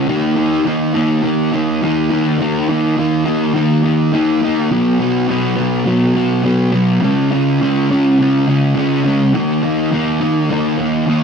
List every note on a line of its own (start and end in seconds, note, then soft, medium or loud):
0.07 0.65 D#3 medium
0.07 0.38 A#3 loud
0.07 0.36 D#4 loud
0.37 0.66 A#3 medium
0.37 0.67 D#4 medium
0.65 1.22 D#3 medium
0.65 0.96 A#3 medium
0.65 0.94 D#4 medium
0.94 1.23 A#3 medium
0.94 1.25 D#4 medium
1.23 1.80 D#3 loud
1.23 1.54 A#3 loud
1.23 1.52 D#4 loud
1.53 1.82 A#3 medium
1.53 1.84 D#4 medium
1.81 2.38 D#3 medium
1.81 2.12 A#3 medium
1.81 2.10 D#4 medium
2.10 2.39 A#3 medium
2.10 2.40 D#4 medium
2.39 2.95 D#3 medium
2.39 2.70 A#3 medium
2.39 2.67 D#4 loud
2.69 2.97 A#3 medium
2.69 2.98 D#4 medium
2.97 3.53 D#3 medium
2.97 3.27 A#3 medium
2.97 3.24 D#4 medium
3.25 3.55 A#3 medium
3.25 3.56 D#4 medium
3.54 4.12 D#3 loud
3.54 3.85 A#3 loud
3.54 3.83 D#4 loud
3.84 4.13 A#3 medium
3.84 4.14 D#4 medium
4.13 4.70 D#3 medium
4.13 4.44 A#3 medium
4.13 4.41 D#4 medium
4.43 4.71 A#3 medium
4.43 4.70 D#4 medium
4.71 5.26 B2 loud
4.71 5.01 F#3 loud
4.71 4.98 B3 loud
4.99 5.28 F#3 medium
4.99 5.29 B3 medium
5.28 5.84 B2 medium
5.28 5.58 F#3 medium
5.28 5.55 B3 medium
5.56 5.85 F#3 medium
5.56 5.86 B3 medium
5.85 6.42 B2 loud
5.85 6.16 F#3 loud
5.85 6.13 B3 loud
6.15 6.44 F#3 medium
6.15 6.44 B3 medium
6.43 7.01 B2 medium
6.43 6.74 F#3 medium
6.43 6.71 B3 medium
6.72 7.02 F#3 medium
6.72 7.01 B3 medium
7.02 7.60 C#3 medium
7.02 7.33 G#3 medium
7.02 7.30 C#4 loud
7.31 7.61 G#3 medium
7.31 7.62 C#4 medium
7.61 8.18 C#3 medium
7.61 7.92 G#3 medium
7.61 7.89 C#4 medium
7.90 8.20 G#3 medium
7.90 8.21 C#4 medium
8.19 8.74 C#3 loud
8.19 8.49 G#3 loud
8.19 8.46 C#4 loud
8.48 8.76 G#3 medium
8.48 8.77 C#4 medium
8.75 9.32 C#3 medium
8.75 9.07 G#3 medium
8.75 9.04 C#4 loud
9.05 9.34 G#3 medium
9.05 9.33 C#4 medium
9.34 9.91 D#3 loud
9.34 9.65 A#3 loud
9.34 9.62 D#4 loud
9.62 9.93 A#3 medium
9.62 9.93 D#4 medium
9.92 10.49 D#3 medium
9.92 10.23 A#3 medium
9.92 10.20 D#4 medium
10.21 10.50 A#3 medium
10.21 10.52 D#4 medium
10.50 11.06 D#3 loud
10.50 10.80 A#3 loud
10.50 10.78 D#4 loud
10.78 11.08 A#3 medium
10.78 11.09 D#4 medium
11.07 11.23 D#3 medium
11.07 11.23 A#3 medium
11.07 11.23 D#4 medium